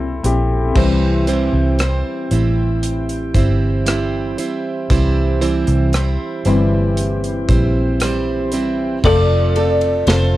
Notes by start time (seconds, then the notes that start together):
Already playing: C2 C4 E4 G4 A4 E5
0.23 A#1 C4 E4 G4, closed hi-hat
0.75 C2 C3 E3 G3 C4 E4 G4 C5, kick, crash
1.27 C3 E3 G3 C4 E4 C5, closed hi-hat
1.53 C2
1.79 G3 C4 E4 C5, cross-stick, closed hi-hat
2.31 A1 G3 C4 E4 C5, closed hi-hat
2.83 closed hi-hat
3.09 closed hi-hat
3.34 G1 G3 C4 E4 C5, kick, closed hi-hat
3.86 G3 C4 E4 C5, cross-stick, closed hi-hat
4.38 G3 C4 E4 C5, closed hi-hat
4.90 C2 C3 E3 G3 C4 E4 C5, kick, closed hi-hat
5.41 C3 E3 G3 C4 E4 C5, closed hi-hat
5.67 C2, closed hi-hat
5.93 G3 C4 E4 C5, cross-stick, closed hi-hat
6.45 G1 E3 G3 C4 E4 C5, closed hi-hat
6.97 closed hi-hat
7.24 closed hi-hat
7.49 A#1 G3 C4 E4 C5, kick, closed hi-hat
8.00 G3 C4 E4 C5, cross-stick, closed hi-hat
8.52 G3 C4 E4 C5, closed hi-hat
9.03 F1 F3 A3 C4 F4 A4 D5, kick, crash
9.56 A3 C4 F4 A4, ride
9.81 ride
10.07 F1 A3 C4 F4 A4 C5, snare, ride